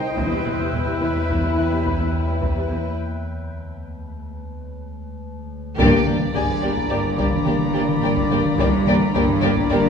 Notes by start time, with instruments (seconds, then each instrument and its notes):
Already playing: synth drone C2, violin section D#4 C5, synth texture C5 D#5 G5, harp D#5 C7
0.17 double bass section E1, synth drone E2, cello section E2, viola section E3, violin section E4 B4, synth texture B4 E5, taiko
0.31 cello section E2, viola section G3
0.45 double bass section E1, cello section E2, viola section E3
0.59 cello section E2, viola section G3
0.73 double bass section E1, cello section E2, viola section E3
0.86 cello section E2, viola section G3
1.00 double bass section E1, cello section E2, viola section E3
1.15 cello section E2, viola section G3
1.29 double bass section E1, cello section E2, viola section E3, taiko
1.42 cello section E2, viola section G3
1.57 double bass section E1, cello section E2, viola section E3
1.71 cello section E2, viola section G3
1.85 double bass section E1, cello section E2 E3, viola section E3, harp B5, taiko
1.99 cello section E2, viola section G3
2.14 cello section E2
2.27 cello section E2, viola section G3
2.41 double bass section E1, cello section E2, viola section E3, taiko
2.56 cello section E2, viola section G3
2.70 double bass section E1, cello section E2, viola section E3
2.98 synth drone D2
5.78 double bass section G1, synth drone G1, cello section G2, timpani G2, viola section A#3, french horn section A#3 D4, violin section G4 D5 A#5, synth texture D5, taiko
6.07 cello section G2, viola section A#3, violin section G4 D5, taiko mid
6.34 double bass section G1, cello section G2, viola section A#3, violin section G4 D5 B5, harp G#4 G#5, taiko
6.49 taiko mid
6.62 cello section G2, viola section A#3, violin section G4 D5
6.77 taiko
6.90 double bass section G1, cello section G2, viola section A#3, violin section G4 D5
7.05 taiko mid
7.18 cello section G2, viola section A#3, violin section G4 D5, taiko
7.33 taiko mid
7.45 double bass section G1, cello section G2, viola section A#3, violin section G4 D5, taiko mid
7.73 cello section G3, viola section A#3, violin section G4 D5
7.88 taiko mid
8.01 double bass section G1, cello section G2 G3, viola section A#3, violin section G4 D5
8.16 taiko
8.31 cello section G2, viola section A#3, violin section G4 D5, taiko mid
8.45 taiko mid
8.58 double bass section G1, synth drone G1, cello section G2, french horn section A#3 D4, viola section A#3, violin section G4 D5, synth texture D5, taiko
8.86 cello section G2, viola section A#3, violin section G4 D5, taiko mid
9.14 double bass section G1, cello section G2, viola section A#3, violin section G4 D5, taiko
9.29 taiko mid
9.42 cello section G2, viola section A#3, violin section G4 D5
9.57 taiko
9.71 double bass section G1, cello section G2, viola section A#3, violin section G4 D5
9.85 taiko mid